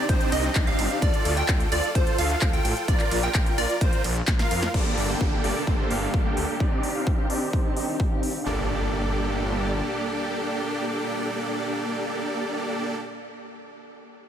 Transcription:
0.09 C2 C4 D4 D#4 G4 C5, kick, closed hi-hat, ride
0.21 closed hi-hat
0.32 C2 C4 D4 D#4 G4 D#5, open hi-hat, ride
0.44 closed hi-hat
0.55 C2, kick, clap, closed hi-hat, ride
0.67 C4 D4 D#4 G4 F5, closed hi-hat
0.79 G1, open hi-hat, ride
0.90 closed hi-hat
1.02 D2 F4 A4 D5, kick, closed hi-hat, ride
1.14 closed hi-hat
1.25 D2, open hi-hat, ride
1.37 F4 A4 G5, closed hi-hat
1.48 D2, kick, clap, closed hi-hat, ride
1.60 closed hi-hat
1.72 D2 F4 A4 D5, open hi-hat, ride
1.84 closed hi-hat
1.95 D2 F4 A4 C5, kick, closed hi-hat, ride
2.07 closed hi-hat
2.18 D2 F4 A4 F5, open hi-hat, ride
2.30 closed hi-hat
2.41 D2, kick, clap, closed hi-hat, ride
2.53 F4 A4 G5, closed hi-hat
2.65 A1, open hi-hat, ride
2.77 closed hi-hat
2.88 A#1 F4 A#4 D5, kick, closed hi-hat, ride
3.00 clap, closed hi-hat
3.11 A#1, open hi-hat, ride
3.23 F4 A#4 G5, closed hi-hat
3.35 A#1, kick, clap, closed hi-hat, ride
3.46 closed hi-hat
3.58 A#1 F4 A#4 D5, open hi-hat, ride
3.70 closed hi-hat
3.81 A#1 F4 A#4 C5, kick, closed hi-hat, ride
3.93 closed hi-hat
4.04 A#1, open hi-hat, ride
4.16 closed hi-hat
4.27 A#1, kick, snare, clap, closed hi-hat, ride
4.39 F4 A#4 F5, snare, closed hi-hat
4.51 F2, open hi-hat, ride
4.63 snare, closed hi-hat
4.74 G1 A#3 D4 G4 A4 D5, kick, crash, downlifter
4.97 G1, open hi-hat
5.09 A#3 D4 G4 A4 G5
5.21 G1, kick
5.44 G1 A#3 D4 G4 A4 D5, open hi-hat
5.67 G1 A#3 D4 G4 A4 C5, kick
5.91 G1 A#3 D4 G4 A4 F5, open hi-hat
6.14 G1, kick
6.25 A#3 D4 G4 A4 G5
6.37 D2, open hi-hat
6.60 D#3 G3 C4 D4 D#4 G4 D5, kick
6.83 open hi-hat
6.95 C4 D4 D#4 G4 F5
7.07 kick
7.30 C4 D4 D#4 G4 D5, open hi-hat
7.53 C4 D4 D#4 G4 C5, kick
7.77 C4 D4 D#4 G4 D#5, open hi-hat
8.00 kick
8.11 C4 D4 D#4 G4 F5
8.23 open hi-hat
8.46 G1 A#2 G3 A#3 D4 G4 A4 D5, impact

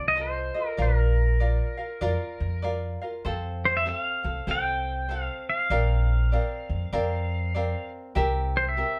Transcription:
Already playing: C2 F4 A4 C5
0.08 D#5
0.15 F4 A4 C5 D#5
0.21 C5
0.54 F4 A4 D#5
0.68 A#4
0.77 A#1 F4 A#4 D5 F5
0.82 A#4
1.40 F4 A#4 D5 F5
1.77 F4 A#4 F5
2.01 F2 F4 A#4 D5 F5
2.40 F2
2.62 F4 A#4 D5 F5
3.01 F4 A#4 F5
3.25 F2 C4 A4 C5 F5
3.65 C5
3.77 E5
3.85 C4 A4 C5 F5
4.23 C2 C4 A4 F5
4.47 C2 C4 A4 C5 F5
4.51 G5
5.09 C4 A4 C5 F5
5.23 F5
5.50 F5
5.70 A#1 C4 A#4 D5 F5
6.32 C4 A#4 D5 F5
6.70 F2
6.93 F2 C4 A#4 D5 F5
7.54 C4 A#4 D5 F5
8.15 C2 C4 G4 A#4 E5
8.57 C5
8.69 E5
8.77 C4 G4 A#4 E5

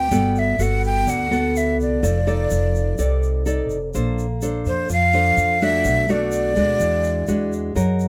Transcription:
Already playing: G5
0.11 G1 G3 B3 F#4 A4, shaker
0.35 E5, shaker
0.59 G1 B3 F#4 A4 F#5, shaker
0.83 G5, shaker
1.07 D2 D3 F#5, shaker
1.30 B3 F#4 A4, shaker
1.56 E5, shaker
1.79 C2 D5, shaker
2.03 F1 F3 D#4 A4 D5, shaker
2.27 D#4 A4 D5, shaker
2.50 F1, shaker
2.75 shaker
2.98 C2 C3 D#4 A4 D5, shaker
3.23 shaker
3.46 D#4 A4 D5, shaker
3.70 F1, shaker
3.94 A#1 A#3 D4 A4 C5, shaker
4.19 shaker
4.42 D4 A4 C5, shaker
4.65 F2 C5, shaker
4.89 F2 F3 F5, shaker
5.13 D4 A4 C5, shaker
5.37 F2, shaker
5.61 A3 D4 F#4 E5, shaker
5.84 B1 B2, shaker
6.08 A3 D4 F#4 D5, shaker
6.32 shaker
6.56 D2 G#3 D4 F#4, shaker
6.80 E2 E3, shaker
7.04 shaker
7.27 E2 G#3 D4 F#4, shaker
7.53 shaker
7.75 F#2 F#3 D#4 G#4 A#4, shaker
8.00 shaker

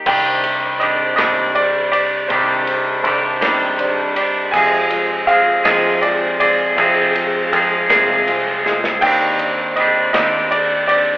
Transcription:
0.05 C2 C3 D#3 G3 C4 D4 G4 C5 D5 G5, kick, crash
0.44 D4 G4 C5 D5, ride
0.80 D#3 G3 C4 D4 C5 D#5 D6, ride
0.84 G4
1.16 C2 G3 D4 G4 D#5, kick, snare, ride
1.20 C3 D#3 C4
1.55 D#3 C4 D4 G4 C5 D5, ride
1.92 G3 D4 G4 C5 D5, ride
1.96 C4
2.28 C2 C3 D#3 G3 C4 D4 C5, kick, ride
2.32 G4
2.67 C4 D4 G4 C5 D5, ride
3.04 C2 D#3 G3 C4 D4 G4 C5 D5, ride
3.41 G2 C3 D#3 G3 C4 D4 G4, kick, snare, ride
3.78 D#3 C4 D4 G4 C5 D5, ride
4.16 C4 D4 G4 C5 D5, ride
4.20 G3
4.51 F2 C3 F3 G#3 C4 F4 G#4 C5 G#5, kick, crash
4.56 C5
4.89 F3 G#3 C4 F4 G#4 C5, ride
5.27 F3 G#3 C4 F4 G#4 C5 F5, ride
5.64 F2 C3 F3 G#3 C4 G#4 D#5, kick, snare, ride
6.01 F3 G#3 C4 F4 G#4 C5 D5, ride
6.39 F3 G#3 C4 F4 G#4 C5 D5, ride
6.75 F2 C3 F3 G#3 C4 G#4 C5 F5, kick, ride
7.13 F3 G#3 C4 F4 G#4 C5, ride
7.51 F2 F3 G#3 C4 F4 G#4 A#4, ride
7.88 C2 F2 C3 F3 G#3 C4 G#4, kick, snare, ride
8.25 F3 G#3 C4 F4 G#4, ride
8.29 C5
8.64 F3 G#3 C4 F4 G#4 D#5, snare
8.84 snare
9.01 D#2 D#3 G3 C4 D4 G4 C5 D5 G5, kick, crash
9.39 C4 D4 G4 C5 D5, ride
9.76 D#3 G3 C4 D4 G4 C5 D#5 D6, ride
10.13 D#2 D#3 C4 D4 G4 D#5, kick, snare, ride
10.18 G3
10.50 D#3 C4 D4 G4 C5 D5, ride
10.87 C4 D4 G4 C5 D5, ride

